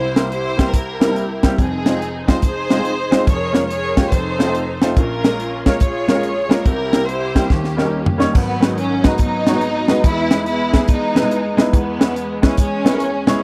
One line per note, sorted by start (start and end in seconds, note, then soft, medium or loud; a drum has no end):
0.00 1.53 C2 medium
0.00 1.54 C3 medium
0.00 0.31 E4 medium
0.00 0.30 G4 medium
0.00 0.29 C5 loud
0.15 0.26 G3 medium
0.15 0.27 A#3 medium
0.15 0.27 C4 medium
0.15 0.27 E4 medium
0.15 0.27 A#4 medium
0.15 snare loud
0.15 closed hi-hat medium
0.30 0.73 E4 medium
0.30 0.73 G4 medium
0.30 0.70 C5 loud
0.30 closed hi-hat medium
0.57 0.68 G3 medium
0.57 0.69 A#3 medium
0.57 0.69 C4 medium
0.57 0.69 E4 medium
0.57 0.69 G4 medium
0.57 kick medium
0.57 snare loud
0.57 closed hi-hat medium
0.72 1.54 E4 medium
0.72 1.54 G4 medium
0.72 1.43 A#4 loud
0.72 kick loud
0.72 closed hi-hat loud
1.00 1.06 G3 medium
1.00 1.06 A#3 medium
1.00 1.06 C4 medium
1.00 1.06 E4 medium
1.00 1.06 A#4 medium
1.00 snare loud
1.00 closed hi-hat medium
1.08 1.21 G3 medium
1.08 1.21 A#3 medium
1.08 1.22 C4 medium
1.08 1.22 E4 medium
1.08 1.22 A#4 medium
1.16 closed hi-hat medium
1.43 1.54 G3 medium
1.43 1.54 A#3 medium
1.43 1.54 C4 medium
1.43 1.54 E4 medium
1.43 1.55 G4 loud
1.43 kick medium
1.43 snare loud
1.43 closed hi-hat medium
1.58 3.24 F1 medium
1.58 3.24 F2 medium
1.58 2.39 C4 medium
1.58 2.39 D#4 medium
1.58 2.24 G#4 loud
1.58 kick loud
1.58 closed hi-hat medium
1.86 1.96 G#3 medium
1.86 1.96 C4 medium
1.86 1.97 D#4 medium
1.86 1.97 F4 medium
1.86 1.97 C5 medium
1.86 snare loud
1.86 closed hi-hat medium
2.02 closed hi-hat medium
2.27 2.38 G#3 medium
2.27 2.38 C4 medium
2.27 2.38 D#4 medium
2.27 2.39 F4 medium
2.27 2.41 C5 medium
2.27 2.39 C5 medium
2.27 kick medium
2.27 snare loud
2.27 closed hi-hat medium
2.42 3.25 D#4 medium
2.42 3.24 G#4 medium
2.42 3.24 C5 loud
2.42 kick loud
2.42 closed hi-hat loud
2.70 2.75 G#3 medium
2.70 2.76 C4 medium
2.70 2.76 D#4 medium
2.70 2.76 F4 medium
2.70 2.76 D#5 medium
2.70 snare loud
2.70 closed hi-hat medium
2.77 2.90 G#3 medium
2.77 2.90 C4 medium
2.77 2.91 D#4 medium
2.77 2.91 F4 medium
2.77 2.91 G#4 medium
2.85 closed hi-hat medium
3.11 3.22 G#3 loud
3.11 3.22 C4 medium
3.11 3.23 D#4 medium
3.11 3.23 F4 medium
3.11 3.23 C5 loud
3.11 snare loud
3.11 closed hi-hat medium
3.27 4.08 F1 medium
3.27 4.08 F2 medium
3.27 3.69 G#4 medium
3.27 3.69 A#4 medium
3.27 3.67 C#5 loud
3.27 kick loud
3.27 closed hi-hat medium
3.53 3.64 G#3 medium
3.53 3.64 A#3 medium
3.53 3.65 C#4 medium
3.53 3.65 F4 medium
3.53 3.65 A#4 medium
3.53 snare loud
3.53 closed hi-hat medium
3.68 4.09 G#4 medium
3.68 4.09 A#4 medium
3.68 4.08 C#5 loud
3.68 closed hi-hat medium
3.96 4.07 G#3 medium
3.96 4.07 A#3 medium
3.96 4.07 C#4 medium
3.96 4.08 F4 medium
3.96 4.08 G4 medium
3.96 kick medium
3.96 snare loud
3.96 closed hi-hat medium
4.10 4.92 F1 medium
4.10 4.93 F2 medium
4.10 4.93 D#4 medium
4.10 4.93 A4 medium
4.10 4.81 C5 loud
4.10 kick loud
4.10 closed hi-hat loud
4.39 4.44 A3 medium
4.39 4.44 C4 medium
4.39 4.45 D#4 medium
4.39 4.45 F4 medium
4.39 4.45 C5 medium
4.39 snare loud
4.39 closed hi-hat medium
4.46 4.59 A3 medium
4.46 4.60 C4 medium
4.46 4.60 D#4 medium
4.46 4.60 F4 medium
4.46 4.60 C5 medium
4.55 closed hi-hat medium
4.82 4.92 A3 medium
4.82 4.92 C4 medium
4.82 4.92 D#4 medium
4.82 4.93 F4 medium
4.82 4.93 C5 loud
4.82 snare loud
4.82 closed hi-hat medium
4.96 6.62 A#1 medium
4.96 6.62 A#2 medium
4.96 5.77 C#4 medium
4.96 5.77 F4 medium
4.96 5.62 A#4 medium
4.96 kick loud
4.96 closed hi-hat medium
5.24 5.34 G#3 medium
5.24 5.35 A#3 medium
5.24 5.35 C#4 medium
5.24 5.35 F4 medium
5.24 5.35 A#4 medium
5.24 snare loud
5.24 closed hi-hat medium
5.40 closed hi-hat medium
5.66 5.77 G#3 medium
5.66 5.77 A#3 medium
5.66 5.77 C#4 medium
5.66 5.77 F4 medium
5.66 5.78 A#4 medium
5.66 5.80 C#5 loud
5.66 kick medium
5.66 snare loud
5.66 closed hi-hat medium
5.80 6.62 F4 medium
5.80 6.63 G#4 medium
5.80 6.62 C#5 loud
5.80 kick loud
5.80 closed hi-hat loud
6.08 6.13 G#3 medium
6.08 6.13 A#3 medium
6.08 6.14 C#4 medium
6.08 6.14 F4 medium
6.08 6.14 A#4 medium
6.08 snare loud
6.08 closed hi-hat medium
6.15 6.28 G#3 medium
6.15 6.28 A#3 medium
6.15 6.29 C#4 medium
6.15 6.29 F4 medium
6.15 6.29 A#4 medium
6.23 closed hi-hat medium
6.49 6.61 G#3 loud
6.49 6.61 A#3 medium
6.49 6.61 C#4 medium
6.49 6.61 F4 medium
6.49 6.61 A#4 loud
6.49 snare loud
6.49 closed hi-hat medium
6.64 7.46 C2 medium
6.64 7.46 C3 medium
6.64 7.07 E4 medium
6.64 7.07 G4 medium
6.64 7.07 A#4 loud
6.64 kick loud
6.64 closed hi-hat medium
6.92 7.03 G3 medium
6.92 7.03 A#3 medium
6.92 7.04 C4 medium
6.92 7.04 E4 medium
6.92 7.04 A#4 medium
6.92 snare loud
6.92 closed hi-hat medium
7.07 7.48 E4 medium
7.07 7.48 G4 medium
7.07 7.50 C5 loud
7.07 closed hi-hat medium
7.35 7.46 G3 medium
7.35 7.46 A#3 medium
7.35 7.46 C4 medium
7.35 7.46 E4 medium
7.35 7.46 G4 medium
7.35 kick medium
7.35 snare loud
7.35 closed hi-hat medium
7.49 8.31 D#2 medium
7.49 8.31 D#3 medium
7.49 8.31 A#3 medium
7.49 8.31 C#4 medium
7.49 8.20 G4 medium
7.49 kick loud
7.49 snare medium
7.64 snare medium
7.77 7.83 G3 medium
7.77 7.83 A#3 medium
7.77 7.83 C#4 medium
7.77 7.83 D#4 medium
7.77 7.83 A#4 medium
7.77 snare medium
7.84 7.98 G3 medium
7.84 7.98 A#3 medium
7.84 7.98 C#4 medium
7.84 7.99 D#4 medium
7.84 7.99 A#4 medium
8.06 floor tom loud
8.18 8.30 G3 medium
8.18 8.30 A#3 medium
8.18 8.30 C#4 medium
8.18 8.30 D#4 medium
8.18 8.30 C#5 loud
8.18 snare loud
8.33 10.00 G#1 medium
8.33 9.99 G#2 medium
8.33 9.16 D#3 medium
8.33 9.16 F#3 medium
8.33 8.75 B3 loud
8.33 kick loud
8.33 crash loud
8.60 8.72 G#3 medium
8.60 8.72 B3 medium
8.60 8.73 D#4 medium
8.60 8.72 F#4 medium
8.60 8.73 B4 medium
8.60 snare loud
8.60 closed hi-hat medium
8.78 9.06 C#4 loud
8.78 closed hi-hat medium
9.03 9.15 G#3 medium
9.03 9.15 B3 medium
9.03 9.15 D#4 medium
9.03 9.20 D#4 loud
9.03 9.15 F#4 medium
9.03 9.15 B4 medium
9.03 kick medium
9.03 snare loud
9.03 closed hi-hat medium
9.18 10.01 F#3 medium
9.18 10.01 B3 medium
9.18 10.01 D#4 loud
9.18 kick loud
9.18 closed hi-hat loud
9.47 9.52 G#3 medium
9.47 9.52 B3 medium
9.47 9.53 D#4 medium
9.47 9.53 F#4 medium
9.47 9.53 C#5 medium
9.47 snare loud
9.47 closed hi-hat medium
9.54 9.67 G#3 medium
9.54 9.67 B3 medium
9.54 9.68 D#4 medium
9.54 9.68 F#4 medium
9.54 9.68 B4 medium
9.61 closed hi-hat medium
9.88 10.00 G#3 medium
9.88 10.00 B3 medium
9.88 10.00 D#4 medium
9.88 10.00 F#4 medium
9.88 10.00 B4 loud
9.88 snare loud
9.88 closed hi-hat medium
10.03 11.69 E2 medium
10.03 11.69 E3 medium
10.03 10.47 G#3 medium
10.03 10.46 B3 medium
10.03 10.46 E4 loud
10.03 kick loud
10.03 closed hi-hat loud
10.31 10.42 G#3 medium
10.31 10.42 B3 medium
10.31 10.42 D#4 medium
10.31 10.42 E4 medium
10.31 10.42 B4 medium
10.31 snare loud
10.31 closed hi-hat medium
10.46 10.88 G#3 medium
10.46 10.89 B3 medium
10.46 10.86 E4 loud
10.46 closed hi-hat medium
10.73 10.84 G#3 medium
10.73 10.84 B3 medium
10.73 10.84 D#4 medium
10.73 10.84 E4 medium
10.73 10.85 G#4 medium
10.73 kick medium
10.73 snare loud
10.73 closed hi-hat medium
10.88 11.70 G#3 medium
10.88 11.70 B3 medium
10.88 11.59 D#4 loud
10.88 kick loud
10.88 closed hi-hat loud
11.15 11.21 G#3 medium
11.15 11.21 B3 medium
11.15 11.21 D#4 medium
11.15 11.22 E4 medium
11.15 11.22 B4 loud
11.15 snare loud
11.15 closed hi-hat medium
11.22 11.36 G#3 medium
11.22 11.36 B3 medium
11.22 11.36 D#4 medium
11.22 11.37 E4 medium
11.22 11.37 B4 medium
11.31 closed hi-hat medium
11.57 11.68 G#3 loud
11.57 11.69 B3 medium
11.57 11.69 D#4 medium
11.57 11.69 E4 medium
11.57 11.69 B4 loud
11.57 snare loud
11.57 closed hi-hat medium
11.72 13.38 E2 medium
11.72 13.38 E3 medium
11.72 12.54 G#3 medium
11.72 12.40 B3 loud
11.72 kick loud
11.72 closed hi-hat medium
11.99 12.10 G#3 medium
11.99 12.11 B3 medium
11.99 12.11 C#4 medium
11.99 12.11 E4 medium
11.99 12.11 B4 medium
11.99 snare loud
11.99 closed hi-hat medium
12.16 closed hi-hat medium
12.42 12.53 G#3 medium
12.42 12.53 B3 medium
12.42 12.53 C#4 medium
12.42 12.58 C#4 loud
12.42 12.53 E4 medium
12.42 12.54 B4 loud
12.42 kick loud
12.42 snare loud
12.42 closed hi-hat medium
12.57 13.39 G#3 medium
12.57 13.39 C#4 loud
12.57 kick loud
12.57 closed hi-hat loud
12.85 12.90 G#3 medium
12.85 12.90 B3 medium
12.85 12.91 C#4 medium
12.85 12.91 E4 medium
12.85 12.91 B4 loud
12.85 snare loud
12.85 closed hi-hat medium
12.92 13.06 G#3 medium
12.92 13.06 B3 medium
12.92 13.06 C#4 medium
12.92 13.06 E4 medium
12.92 13.06 A#4 medium
13.00 closed hi-hat loud
13.27 13.38 G#3 loud
13.27 13.38 B3 medium
13.27 13.38 C#4 medium
13.27 13.38 E4 medium
13.27 13.38 C#5 loud
13.27 snare loud
13.27 closed hi-hat medium